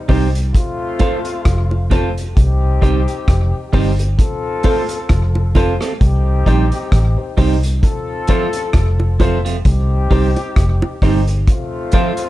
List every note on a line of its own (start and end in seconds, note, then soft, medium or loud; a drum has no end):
0.08 0.51 C2 medium
0.08 0.26 G3 medium
0.08 0.26 C4 loud
0.08 0.27 D#4 medium
0.08 0.26 D#4 loud
0.08 0.26 G4 medium
0.08 0.27 G4 medium
0.08 0.28 C5 loud
0.08 kick medium
0.08 open hi-hat medium
0.08 low bongo medium
0.35 closed hi-hat medium
0.54 1.88 A3 medium
0.54 1.89 C4 medium
0.54 1.88 F4 medium
0.54 kick loud
0.54 closed hi-hat medium
0.99 1.17 A3 medium
0.99 1.17 C4 medium
0.99 1.18 F4 medium
0.99 1.17 F4 loud
0.99 1.18 A4 medium
0.99 1.19 C5 medium
0.99 kick loud
0.99 closed hi-hat medium
0.99 high bongo medium
1.25 muted clean electric guitar stroke soft
1.25 closed hi-hat medium
1.45 2.33 F1 medium
1.45 kick loud
1.45 cross-stick loud
1.45 closed hi-hat medium
1.45 high bongo medium
1.71 high bongo medium
1.90 2.08 A3 medium
1.90 2.08 C4 medium
1.90 2.09 F4 medium
1.90 2.08 F4 medium
1.90 2.09 A4 loud
1.90 2.09 A4 medium
1.90 2.10 C5 loud
1.90 kick medium
1.90 closed hi-hat medium
1.90 high bongo medium
1.90 low bongo medium
2.18 closed hi-hat medium
2.36 2.79 C2 loud
2.36 3.70 C4 medium
2.36 3.71 D#4 medium
2.36 3.70 G4 medium
2.36 kick loud
2.36 closed hi-hat medium
2.81 3.06 C2 loud
2.81 2.99 G3 medium
2.81 2.99 C4 medium
2.81 3.00 D#4 medium
2.81 3.00 G4 medium
2.81 3.01 C5 loud
2.81 kick medium
2.81 closed hi-hat medium
3.08 closed hi-hat medium
3.28 3.51 F1 medium
3.28 kick loud
3.28 cross-stick loud
3.28 closed hi-hat medium
3.73 4.15 G1 loud
3.73 3.90 G3 medium
3.73 3.91 C4 medium
3.73 3.91 D#4 medium
3.73 3.91 G4 medium
3.73 3.92 C5 loud
3.73 kick medium
3.73 open hi-hat medium
3.73 low bongo medium
3.99 4.07 G4 soft
3.99 4.07 C5 soft
3.99 closed hi-hat medium
4.18 5.53 C4 medium
4.18 5.52 F4 medium
4.18 5.52 A4 loud
4.18 kick loud
4.18 closed hi-hat loud
4.63 4.81 A3 loud
4.63 4.82 C4 loud
4.63 4.82 F4 medium
4.63 4.83 A4 medium
4.63 4.82 A4 loud
4.63 4.83 C5 loud
4.63 kick medium
4.63 open hi-hat medium
4.63 high bongo medium
4.89 4.98 A4 soft
4.89 4.98 C5 soft
4.89 muted clean electric guitar stroke soft
4.89 closed hi-hat medium
5.09 5.77 F1 medium
5.09 kick loud
5.09 cross-stick loud
5.09 closed hi-hat medium
5.09 high bongo medium
5.35 high bongo medium
5.55 5.72 A3 medium
5.55 5.73 C4 medium
5.55 5.74 F4 medium
5.55 5.73 F4 loud
5.55 5.74 A4 medium
5.55 5.73 A4 medium
5.55 5.74 C5 loud
5.55 kick loud
5.55 closed hi-hat medium
5.55 high bongo medium
5.55 low bongo medium
5.81 5.92 A3 soft
5.81 5.92 C4 medium
5.81 5.92 F4 medium
5.81 5.91 A4 medium
5.81 5.89 A4 soft
5.81 5.89 C5 soft
5.81 cross-stick medium
5.81 closed hi-hat medium
6.00 6.43 C2 loud
6.00 7.34 C4 medium
6.00 7.35 D#4 medium
6.00 7.34 G4 medium
6.00 kick loud
6.00 closed hi-hat medium
6.46 6.70 A#1 loud
6.46 6.64 G3 medium
6.46 6.64 C4 medium
6.46 6.65 D#4 loud
6.46 6.64 D#4 medium
6.46 6.64 G4 medium
6.46 6.65 G4 medium
6.46 6.65 C5 loud
6.46 kick medium
6.46 closed hi-hat medium
6.72 closed hi-hat medium
6.92 7.16 A1 medium
6.92 kick loud
6.92 cross-stick loud
6.92 closed hi-hat medium
7.18 7.26 G4 soft
7.18 7.26 C5 soft
7.37 7.79 C2 loud
7.37 7.55 G3 medium
7.37 7.55 C4 medium
7.37 7.56 D#4 medium
7.37 7.55 D#4 loud
7.37 7.56 G4 medium
7.37 7.55 G4 medium
7.37 7.56 C5 loud
7.37 kick medium
7.37 open hi-hat medium
7.37 low bongo medium
7.63 closed hi-hat medium
7.82 9.16 C4 medium
7.82 9.17 F4 medium
7.82 9.17 A4 loud
7.82 kick loud
7.82 closed hi-hat medium
8.27 8.46 F3 medium
8.27 8.46 A3 medium
8.27 8.46 C4 medium
8.27 8.47 F4 medium
8.27 8.46 F4 loud
8.27 8.47 A4 medium
8.27 8.47 C5 loud
8.27 kick medium
8.27 closed hi-hat medium
8.27 high bongo medium
8.53 muted clean electric guitar stroke medium
8.53 closed hi-hat medium
8.73 9.62 F1 loud
8.73 kick loud
8.73 cross-stick loud
8.73 closed hi-hat medium
8.73 high bongo medium
9.00 high bongo medium
9.19 9.37 F3 medium
9.19 9.37 A3 medium
9.19 9.37 C4 loud
9.19 9.38 F4 medium
9.19 9.37 F4 medium
9.19 9.38 A4 medium
9.19 9.39 C5 loud
9.19 kick medium
9.19 closed hi-hat medium
9.19 high bongo medium
9.19 low bongo medium
9.45 9.56 F3 medium
9.45 9.56 A3 medium
9.45 9.56 C4 medium
9.45 9.56 F4 medium
9.45 closed hi-hat medium
9.65 10.07 C2 loud
9.65 10.99 C4 medium
9.65 10.99 D#4 medium
9.65 10.99 G4 loud
9.65 kick loud
9.65 closed hi-hat loud
10.10 10.34 C2 loud
10.10 10.28 G3 medium
10.10 10.28 C4 medium
10.10 10.28 D#4 medium
10.10 10.29 D#4 medium
10.10 10.28 G4 medium
10.10 10.29 G4 medium
10.10 10.30 C5 loud
10.10 kick medium
10.10 open hi-hat soft
10.36 closed hi-hat medium
10.36 high bongo medium
10.56 10.80 F1 loud
10.56 kick loud
10.56 cross-stick loud
10.56 closed hi-hat medium
10.82 high bongo medium
11.02 11.44 G1 loud
11.02 11.19 G3 medium
11.02 11.20 C4 medium
11.02 11.20 D#4 medium
11.02 11.20 D#4 loud
11.02 11.20 G4 medium
11.02 11.20 G4 loud
11.02 11.21 C5 medium
11.02 kick loud
11.02 cross-stick medium
11.02 open hi-hat medium
11.27 11.36 G4 soft
11.27 11.36 C5 soft
11.27 closed hi-hat medium
11.48 12.29 A3 medium
11.48 12.29 C4 medium
11.48 12.29 F4 medium
11.48 kick loud
11.48 closed hi-hat medium
11.92 12.10 F3 loud
11.92 12.11 A3 medium
11.92 12.11 C4 loud
11.92 12.11 F4 medium
11.92 12.11 F4 loud
11.92 12.11 A4 medium
11.92 12.12 C5 loud
11.92 kick medium
11.92 closed hi-hat medium
11.92 high bongo medium
12.17 12.27 A4 soft
12.17 12.27 C5 soft
12.17 muted clean electric guitar stroke medium
12.17 closed hi-hat medium